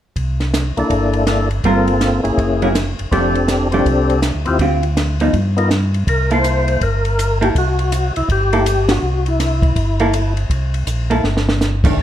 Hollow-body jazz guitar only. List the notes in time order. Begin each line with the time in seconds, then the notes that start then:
1.65 G3 C4 F4 A#4
2.62 F#3 A#3 E4 G#4
3.12 F3 A3 D4 G4
3.74 F3 A3 D4 G4
4.61 D3 C4 F4 G4
5.21 F3 B3 D#4
6.31 A#3 E4 A4
7.41 A#3 E4 A4
8.53 A#3 E4 A4
10.00 A#3 E4 A4
11.10 A#3 E4 A4
11.85 D#3 A3 D4